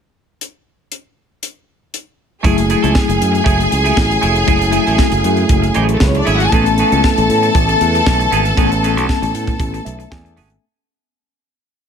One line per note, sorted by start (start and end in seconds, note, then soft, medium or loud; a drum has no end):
0.41 closed hi-hat medium
0.92 closed hi-hat soft
1.43 closed hi-hat medium
1.94 closed hi-hat medium
2.43 2.73 F#1 loud
2.43 10.58 C#3 medium
2.43 4.43 F#3 medium
2.43 6.48 F#3 medium
2.43 2.60 A3 medium
2.43 4.44 A3 medium
2.43 6.48 A3 medium
2.43 2.58 E4 medium
2.43 10.59 E4 medium
2.43 4.44 E4 medium
2.43 5.84 G#4 medium
2.43 6.48 G#4 medium
2.43 2.57 G#4 medium
2.43 4.45 G#4 medium
2.43 5.84 G#5 loud
2.43 kick medium
2.43 closed hi-hat medium
2.58 muted clean electric guitar stroke soft
2.58 closed hi-hat medium
2.70 2.83 A3 medium
2.70 2.82 E4 medium
2.70 2.82 G#4 medium
2.70 closed hi-hat medium
2.83 2.92 C#2 medium
2.83 2.94 A3 soft
2.83 2.94 E4 medium
2.83 2.94 A4 medium
2.83 closed hi-hat soft
2.95 kick loud
2.95 snare medium
3.08 3.18 F#1 loud
3.08 muted clean electric guitar stroke soft
3.08 closed hi-hat medium
3.21 3.40 F#2 medium
3.21 closed hi-hat medium
3.32 muted clean electric guitar stroke soft
3.32 closed hi-hat soft
3.44 3.65 F#1 medium
3.44 3.61 A3 medium
3.44 3.59 E4 medium
3.44 3.58 G#4 medium
3.44 kick loud
3.44 closed hi-hat medium
3.59 muted clean electric guitar stroke soft
3.59 closed hi-hat soft
3.71 3.91 C#2 medium
3.71 muted clean electric guitar stroke soft
3.71 closed hi-hat medium
3.84 3.97 A3 medium
3.84 3.97 E4 medium
3.84 3.96 G#4 medium
3.84 closed hi-hat soft
3.97 4.16 A1 medium
3.97 kick loud
3.97 snare loud
4.10 muted clean electric guitar stroke soft
4.10 closed hi-hat soft
4.21 4.42 F1 medium
4.21 4.38 A3 medium
4.21 4.35 E4 medium
4.21 4.34 G#4 medium
4.21 closed hi-hat medium
4.35 muted clean electric guitar stroke soft
4.35 closed hi-hat soft
4.46 4.77 F#1 loud
4.46 6.47 F#3 medium
4.46 6.48 A3 medium
4.46 4.64 A3 medium
4.46 6.48 E4 medium
4.46 4.59 E4 medium
4.46 4.58 G#4 medium
4.46 6.49 G#4 medium
4.46 kick loud
4.46 closed hi-hat medium
4.59 muted clean electric guitar stroke soft
4.59 closed hi-hat medium
4.71 4.85 A3 medium
4.71 4.86 E4 medium
4.71 4.86 G#4 medium
4.71 closed hi-hat medium
4.86 4.96 A1 medium
4.86 4.97 A3 medium
4.86 4.98 E4 medium
4.86 4.98 A4 medium
4.86 closed hi-hat soft
4.98 kick loud
4.98 snare medium
5.12 5.21 F#1 loud
5.12 muted clean electric guitar stroke soft
5.12 closed hi-hat medium
5.24 5.43 F#2 medium
5.24 closed hi-hat medium
5.37 muted clean electric guitar stroke soft
5.37 closed hi-hat soft
5.49 5.69 F#1 medium
5.49 muted clean electric guitar stroke soft
5.49 kick loud
5.49 closed hi-hat medium
5.62 muted clean electric guitar stroke soft
5.62 closed hi-hat soft
5.74 5.95 A1 medium
5.74 5.96 A3 medium
5.74 5.88 E4 medium
5.74 5.88 G#4 loud
5.74 closed hi-hat medium
5.89 muted clean electric guitar stroke soft
5.89 closed hi-hat soft
5.93 6.01 A3 medium
5.93 6.02 A4 medium
6.00 6.20 C#2 medium
6.00 6.10 B3 medium
6.00 6.10 B4 medium
6.00 kick loud
6.00 snare loud
6.08 6.18 C#4 medium
6.08 6.18 C#5 medium
6.15 6.26 D4 medium
6.15 6.26 D5 medium
6.15 muted clean electric guitar stroke soft
6.15 closed hi-hat soft
6.25 6.46 G#1 medium
6.25 6.42 A3 medium
6.25 6.40 E4 medium
6.25 6.36 E4 medium
6.25 6.38 G#4 medium
6.25 6.35 E5 medium
6.25 closed hi-hat medium
6.36 6.44 F#4 medium
6.36 6.44 F#5 medium
6.36 muted clean electric guitar stroke soft
6.40 6.52 G#4 medium
6.40 6.52 G#5 loud
6.40 closed hi-hat soft
6.51 6.82 A1 loud
6.51 10.58 E3 medium
6.51 8.53 A3 medium
6.51 10.58 A3 medium
6.51 6.69 B3 medium
6.51 10.59 B3 medium
6.51 8.54 B3 medium
6.51 6.66 C#4 medium
6.51 8.54 C#4 medium
6.51 6.65 G#4 medium
6.51 10.32 A4 loud
6.51 10.32 A5 loud
6.51 kick loud
6.51 closed hi-hat medium
6.55 8.55 A4 medium
6.66 muted clean electric guitar stroke medium
6.66 closed hi-hat medium
6.78 6.92 B3 medium
6.78 6.92 C#4 medium
6.78 6.92 G#4 medium
6.78 closed hi-hat medium
6.92 7.01 C#2 loud
6.92 7.03 B3 medium
6.92 7.03 C#4 medium
6.92 7.03 A4 medium
6.92 closed hi-hat soft
7.04 kick loud
7.04 snare loud
7.17 7.27 A1 loud
7.17 muted clean electric guitar stroke soft
7.17 closed hi-hat medium
7.29 7.48 A2 medium
7.29 closed hi-hat medium
7.43 muted clean electric guitar stroke medium
7.43 closed hi-hat soft
7.55 7.74 A1 loud
7.55 muted clean electric guitar stroke soft
7.55 kick loud
7.55 closed hi-hat medium
7.69 muted clean electric guitar stroke soft
7.69 closed hi-hat soft
7.81 8.00 E2 medium
7.81 closed hi-hat medium
7.95 muted clean electric guitar stroke soft
7.95 closed hi-hat soft
8.06 8.26 B1 medium
8.06 kick loud
8.06 snare loud
8.20 muted clean electric guitar stroke soft
8.20 closed hi-hat soft
8.32 8.51 G#1 medium
8.32 8.48 B3 medium
8.32 8.45 C#4 medium
8.32 8.44 G#4 medium
8.32 closed hi-hat medium
8.45 muted clean electric guitar stroke soft
8.45 closed hi-hat soft
8.55 8.97 A1 loud
8.55 10.57 A3 medium
8.55 10.58 B3 medium
8.55 8.74 B3 medium
8.55 10.59 C#4 medium
8.55 8.72 C#4 medium
8.55 8.70 G#4 loud
8.55 10.59 A4 medium
8.55 kick loud
8.55 closed hi-hat medium
8.72 muted clean electric guitar stroke soft
8.72 closed hi-hat medium
8.83 8.96 B3 medium
8.83 8.96 C#4 medium
8.83 8.96 G#4 medium
8.83 closed hi-hat medium
8.96 9.06 B1 loud
8.96 9.09 B3 medium
8.96 9.09 C#4 medium
8.96 9.08 A4 medium
8.96 closed hi-hat soft
9.09 muted clean electric guitar stroke soft
9.09 kick loud
9.09 snare medium
9.22 9.31 A1 loud
9.22 muted clean electric guitar stroke soft
9.22 closed hi-hat medium
9.34 9.53 A2 medium
9.34 closed hi-hat medium
9.47 muted clean electric guitar stroke soft
9.47 kick medium
9.47 closed hi-hat soft
9.60 9.79 A1 medium
9.60 muted clean electric guitar stroke soft
9.60 kick loud
9.60 closed hi-hat medium
9.74 muted clean electric guitar stroke soft
9.74 closed hi-hat soft
9.85 10.05 B1 medium
9.85 10.09 E5 medium
9.85 closed hi-hat medium
9.99 muted clean electric guitar stroke medium
9.99 closed hi-hat soft
10.11 10.39 E2 loud
10.11 10.59 G#5 medium
10.11 kick loud
10.11 snare loud
10.25 muted clean electric guitar stroke soft
10.25 closed hi-hat soft
10.37 10.56 G#1 medium
10.37 10.53 B3 medium
10.37 10.51 C#4 medium
10.37 10.49 G#4 medium
10.37 open hi-hat medium
10.50 muted clean electric guitar stroke soft
10.50 closed hi-hat soft